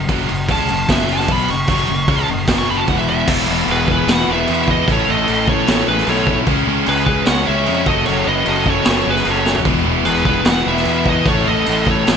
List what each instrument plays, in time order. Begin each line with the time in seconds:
0.09 fingered electric bass F#1, overdriven electric guitar F#2 C#3 F#3, kick, crash
0.29 fingered electric bass F#1, overdriven electric guitar F#2 C#3, crash
0.49 fingered electric bass C#2, overdriven electric guitar C#3 G#3 C#4, lead electric guitar A5, kick, crash
0.68 fingered electric bass F#1, overdriven electric guitar F#2 C#3, crash
0.89 fingered electric bass F#1, overdriven electric guitar F#2 C#3 F#3, lead electric guitar E5, kick, snare, crash
1.09 crash
1.13 lead electric guitar A5
1.20 snare
1.28 fingered electric bass B1, overdriven electric guitar B2 F#3 B3, lead electric guitar B5, kick, crash
1.48 fingered electric bass F#1, overdriven electric guitar F#2 C#3, lead electric guitar C#6, crash
1.67 fingered electric bass F#1, overdriven electric guitar F#2, kick, crash
1.72 overdriven electric guitar C#3 F#3
1.88 fingered electric bass F#1, overdriven electric guitar F#2 C#3, crash
2.08 fingered electric bass C#2, overdriven electric guitar C#3 G#3 C#4, kick, crash
2.28 fingered electric bass F#1, overdriven electric guitar F#2 C#3, crash
2.47 fingered electric bass F#1, overdriven electric guitar F#2 C#3 F#3, kick, snare, crash
2.59 lead electric guitar C#6
2.68 lead electric guitar B5, crash
2.77 lead electric guitar A5
2.88 fingered electric bass E1, overdriven electric guitar E2 B2 E3, lead electric guitar F#5, kick, crash
2.98 lead electric guitar E5
3.08 lead electric guitar E5, crash
3.27 fingered electric bass E1, overdriven electric guitar E2 B2 E3, distorted electric guitar E3 G#3 B3 E4, kick, crash
3.46 fingered electric bass E1, distorted electric guitar E2 E3
3.50 overdriven electric guitar E2 B2 E3
3.68 fingered electric bass E1, overdriven electric guitar E2 B2 E3, lead electric guitar G#4, crash
3.72 lead electric guitar B4
3.88 overdriven electric guitar E2 B2 E3, lead electric guitar G#4, kick
3.92 lead electric guitar B4
4.07 fingered electric bass E1, overdriven electric guitar E2 B2 E3, lead electric guitar B4, snare, crash
4.11 lead electric guitar F#5
4.27 fingered electric bass E1, overdriven electric guitar E2 B2, distorted electric guitar E3 G#3 B3 E4, lead electric guitar B4
4.31 overdriven electric guitar E3, lead electric guitar E5
4.47 fingered electric bass E2, overdriven electric guitar E2 B2, distorted electric guitar E3 G#3 B3 E4, crash
4.52 overdriven electric guitar E3
4.68 overdriven electric guitar E2 B2 E3, lead electric guitar B4 D#5, kick
4.87 fingered electric bass A1, distorted electric guitar A2 E3 A3 C#4 E4, overdriven electric guitar A2 E3 A3, lead electric guitar A4, kick, crash
4.92 lead electric guitar C#5
5.09 fingered electric bass A1, overdriven electric guitar A2 E3 A3, lead electric guitar A4 D#5
5.28 fingered electric bass A1, overdriven electric guitar A2 E3 A3, crash
5.48 overdriven electric guitar A2 E3 A3, lead electric guitar A4 C#5, kick
5.67 fingered electric bass A1, overdriven electric guitar A2 E3 A3, snare, crash
5.88 fingered electric bass A1, overdriven electric guitar A2 E3 A3, distorted electric guitar A2 E3 A3 C#4 E4, lead electric guitar G#4 B4
5.98 snare
6.07 fingered electric bass B1, distorted electric guitar A2 E3 A3 C#4 E4, overdriven electric guitar A2 E3 A3, lead electric guitar A4 C#5, crash
6.27 overdriven electric guitar A2 E3 A3, kick
6.47 fingered electric bass C#2, distorted electric guitar C#3 G#3 C#4 E4, overdriven electric guitar C#3 G#3 C#4, kick, crash
6.67 fingered electric bass C#2, overdriven electric guitar C#3 G#3 C#4
6.86 fingered electric bass C#2, overdriven electric guitar C#3 G#3 C#4, lead electric guitar G#4 B4, crash
7.05 overdriven electric guitar C#3 G#3 C#4, lead electric guitar G#4 B4, kick
7.25 fingered electric bass C#2, overdriven electric guitar C#3 G#3 C#4, lead electric guitar C#5 F#5, snare, crash
7.46 fingered electric bass C#2, overdriven electric guitar C#3 G#3 C#4, distorted electric guitar C#3 G#3 C#4 E4, lead electric guitar C#5 E5
7.65 fingered electric bass F2, distorted electric guitar C#3 G#3 C#4 E4, overdriven electric guitar C#3 G#3 C#4, crash
7.86 fingered electric bass F#1, overdriven electric guitar F#2 C#3 F#3, distorted electric guitar F#3 A3 C#4 F#4, lead electric guitar A4 D#5, kick
8.05 fingered electric bass F#1, overdriven electric guitar F#2 C#3 F#3, lead electric guitar A4 C#5, crash
8.27 fingered electric bass F#1, overdriven electric guitar F#2 C#3 F#3, lead electric guitar B4 D#5
8.45 fingered electric bass F#1, overdriven electric guitar F#2 C#3 F#3, lead electric guitar A4 D#5, crash
8.65 overdriven electric guitar F#2 C#3 F#3, lead electric guitar A4, kick
8.70 lead electric guitar C#5
8.85 fingered electric bass F#1, overdriven electric guitar F#2 C#3 F#3, distorted electric guitar F#3 A3 C#4, snare, crash
8.89 distorted electric guitar F#4
9.05 fingered electric bass F#1, overdriven electric guitar F#2 C#3 F#3, distorted electric guitar F#3 A3 C#4 F#4, lead electric guitar G#4
9.10 lead electric guitar B4
9.16 snare
9.25 fingered electric bass F#1, overdriven electric guitar F#2 C#3 F#3, crash
9.29 lead electric guitar A4 C#5
9.46 overdriven electric guitar F#2 C#3 F#3, snare
9.55 floor tom
9.65 fingered electric bass E1, overdriven electric guitar E2 B2 E3, distorted electric guitar E3 G#3 B3 E4, kick, crash
9.85 fingered electric bass E1, overdriven electric guitar E2 B2 E3
10.05 fingered electric bass E1, overdriven electric guitar E2 B2 E3, lead electric guitar G#4 B4, crash
10.25 overdriven electric guitar E2 B2 E3, lead electric guitar G#4 B4, kick
10.45 fingered electric bass E1, overdriven electric guitar E2 B2 E3, lead electric guitar B4 F#5, snare, crash
10.64 fingered electric bass E1, overdriven electric guitar E2 B2 E3, distorted electric guitar E3 G#3 B3 E4, lead electric guitar B4 E5
10.77 snare
10.85 fingered electric bass E2, overdriven electric guitar E2 B2 E3, distorted electric guitar E3 G#3 B3 E4, crash
11.06 overdriven electric guitar E2 B2 E3, lead electric guitar B4 D#5, kick
11.26 fingered electric bass A1, distorted electric guitar A2 E3 A3 C#4 E4, overdriven electric guitar A2 E3 A3, lead electric guitar A4 C#5, kick, crash
11.48 fingered electric bass A1, overdriven electric guitar A2 E3 A3, lead electric guitar A4 D#5
11.66 fingered electric bass A1, overdriven electric guitar A2 E3 A3, crash
11.87 overdriven electric guitar A2 E3 A3, lead electric guitar A4, kick
11.91 lead electric guitar C#5
12.07 fingered electric bass A1, overdriven electric guitar A2 E3 A3, snare, crash